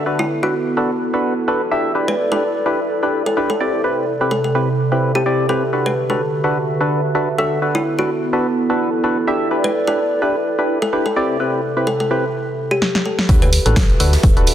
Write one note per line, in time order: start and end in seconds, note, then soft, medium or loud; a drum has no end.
0.00 2.48 B3 medium
0.00 6.39 E4 medium
0.00 0.55 F#4 medium
0.00 0.59 B4 medium
0.00 0.59 E5 medium
0.05 0.27 D4 medium
0.05 0.27 F#4 medium
0.05 6.40 A4 medium
0.05 0.27 A4 medium
0.05 0.27 B4 medium
0.19 0.40 E4 medium
0.38 6.40 D5 medium
0.43 0.55 D4 medium
0.43 0.55 F#4 medium
0.43 0.77 F#4 medium
0.43 0.55 A4 medium
0.43 0.55 B4 medium
0.77 0.91 D4 medium
0.77 0.91 F#4 medium
0.77 0.91 A4 medium
0.77 0.91 B4 medium
1.14 1.34 D4 medium
1.14 1.34 F#4 medium
1.14 1.34 A4 medium
1.14 1.34 B4 medium
1.48 1.62 D4 medium
1.48 1.62 F#4 medium
1.48 1.62 A4 medium
1.48 1.62 B4 loud
1.71 1.93 D4 medium
1.71 1.93 E4 medium
1.71 1.93 G4 medium
1.71 1.93 E5 loud
1.95 2.16 D4 medium
1.95 2.16 E4 medium
1.95 2.16 G4 medium
1.95 2.16 B4 medium
2.08 2.29 B4 medium
2.32 2.44 D4 medium
2.32 2.44 E4 medium
2.32 2.44 G4 medium
2.32 2.48 A4 medium
2.32 2.44 B4 medium
2.66 2.80 D4 medium
2.66 2.80 E4 medium
2.66 2.80 G4 medium
2.66 2.80 B4 loud
3.03 3.23 D4 medium
3.03 3.23 E4 medium
3.03 3.23 G4 medium
3.03 3.23 B4 medium
3.26 3.42 A4 medium
3.37 3.51 D4 medium
3.37 3.51 E4 medium
3.37 3.51 G4 medium
3.37 3.51 B4 loud
3.50 3.66 A4 medium
3.60 5.73 C3 medium
3.60 3.82 C4 medium
3.60 3.82 E4 medium
3.60 3.82 G4 medium
3.60 3.82 D5 loud
3.84 4.05 C4 medium
3.84 4.05 E4 medium
3.84 4.05 G4 medium
3.84 4.05 B4 medium
4.21 4.33 C4 medium
4.21 4.33 E4 medium
4.21 4.33 G4 medium
4.21 4.33 B4 medium
4.31 4.40 A4 medium
4.44 4.51 A4 medium
4.55 4.69 C4 medium
4.55 4.69 E4 medium
4.55 4.69 G4 medium
4.55 4.69 B4 loud
4.92 5.12 C4 medium
4.92 5.12 E4 medium
4.92 5.12 G4 medium
4.92 5.12 B4 medium
5.15 5.23 C4 medium
5.15 5.23 E4 medium
5.15 5.31 G4 medium
5.15 5.23 G4 medium
5.15 5.23 A4 medium
5.26 5.46 C4 loud
5.26 5.46 E4 medium
5.26 5.46 G4 medium
5.26 5.46 D5 loud
5.49 5.63 C4 loud
5.49 5.63 E4 medium
5.49 5.63 G4 medium
5.49 5.78 A4 medium
5.49 5.63 B4 loud
5.73 7.38 D3 medium
5.73 5.94 D4 medium
5.73 5.94 F#4 medium
5.73 5.94 A4 medium
5.73 5.94 B4 medium
5.86 6.07 B4 medium
5.92 8.15 F#4 medium
5.92 7.98 B4 medium
6.04 8.14 E5 medium
6.10 6.21 D4 medium
6.10 6.21 F#4 medium
6.10 6.21 A4 medium
6.10 6.26 A4 medium
6.10 6.21 B4 medium
6.44 6.58 D4 medium
6.44 6.58 F#4 medium
6.44 6.58 A4 medium
6.44 6.58 B4 loud
6.81 7.01 D4 medium
6.81 7.01 F#4 medium
6.81 7.01 A4 medium
6.81 7.01 B4 medium
7.15 7.29 D4 medium
7.15 7.29 F#4 medium
7.15 7.29 A4 medium
7.15 7.29 B4 loud
7.38 10.03 B3 medium
7.38 7.59 D4 medium
7.38 7.59 F#4 medium
7.38 7.60 A4 medium
7.38 7.56 A4 medium
7.38 7.59 E5 loud
7.62 7.83 D4 medium
7.62 7.83 F#4 medium
7.62 7.83 A4 medium
7.62 7.83 B4 medium
7.69 12.35 E4 medium
7.75 7.96 E4 medium
7.75 12.35 A4 medium
7.91 12.35 D5 medium
7.99 8.10 D4 medium
7.99 8.33 F#4 medium
7.99 8.10 F#4 medium
7.99 8.10 A4 medium
7.99 8.11 B4 medium
8.33 8.47 D4 medium
8.33 8.47 F#4 medium
8.33 8.47 A4 medium
8.33 8.47 B4 loud
8.70 8.90 D4 medium
8.70 8.90 F#4 medium
8.70 8.90 A4 medium
8.70 8.90 B4 medium
9.04 9.18 D4 medium
9.04 9.18 F#4 medium
9.04 9.18 A4 medium
9.04 9.18 B4 loud
9.27 9.49 D4 medium
9.27 9.49 E4 medium
9.27 9.49 G4 medium
9.27 9.49 E5 loud
9.51 9.72 D4 medium
9.51 9.72 E4 medium
9.51 9.72 G4 medium
9.51 9.72 B4 medium
9.64 9.85 B4 medium
9.88 9.99 D4 medium
9.88 9.99 E4 medium
9.88 9.99 G4 medium
9.88 10.04 A4 medium
9.88 9.99 B4 medium
10.22 10.36 D4 medium
10.22 10.36 E4 medium
10.22 10.36 G4 medium
10.22 10.36 B4 loud
10.59 10.79 D4 medium
10.59 10.79 E4 medium
10.59 10.79 G4 medium
10.59 10.79 B4 medium
10.82 10.98 A4 medium
10.93 11.07 D4 medium
10.93 11.07 E4 medium
10.93 11.07 G4 medium
10.93 11.07 B4 loud
11.06 11.22 A4 medium
11.16 12.35 C3 medium
11.16 11.38 C4 loud
11.16 11.38 E4 medium
11.16 11.37 G4 medium
11.16 11.38 D5 loud
11.40 11.61 C4 medium
11.40 11.61 E4 medium
11.40 11.61 G4 medium
11.40 11.61 B4 medium
11.77 11.88 C4 medium
11.77 11.88 E4 medium
11.77 11.88 G4 medium
11.77 11.88 B4 medium
11.87 11.96 A4 medium
12.00 12.07 A4 medium
12.11 12.25 C4 medium
12.11 12.25 E4 medium
12.11 12.25 G4 medium
12.11 12.25 B4 loud
12.71 12.87 G4 medium
12.82 snare medium
12.95 snare medium
13.06 13.29 A4 medium
13.19 snare medium
13.29 13.59 D2 loud
13.29 13.50 D4 medium
13.29 13.50 F#4 medium
13.29 14.54 F#4 medium
13.29 13.50 A4 medium
13.29 13.50 B4 medium
13.29 kick loud
13.29 closed hi-hat medium
13.37 14.54 B4 medium
13.42 13.63 B4 medium
13.42 closed hi-hat soft
13.47 14.54 E5 medium
13.53 closed hi-hat medium
13.53 open hi-hat loud
13.66 13.95 A1 medium
13.66 13.77 D4 medium
13.66 13.77 F#4 medium
13.66 13.77 A4 medium
13.66 13.82 A4 medium
13.66 13.77 B4 medium
13.66 closed hi-hat medium
13.76 kick loud
13.76 snare loud
13.76 closed hi-hat medium
13.89 closed hi-hat soft
14.00 14.17 D2 medium
14.00 14.14 D4 medium
14.00 14.14 F#4 medium
14.00 14.14 A4 medium
14.00 14.14 B4 loud
14.00 closed hi-hat medium
14.00 open hi-hat loud
14.13 snare medium
14.13 closed hi-hat medium
14.23 14.54 D1 loud
14.23 kick loud
14.23 closed hi-hat loud
14.23 closed hi-hat medium
14.37 14.54 D4 medium
14.37 14.54 F#4 medium
14.37 14.54 A4 medium
14.37 14.54 B4 medium
14.37 closed hi-hat soft
14.47 closed hi-hat medium
14.47 open hi-hat loud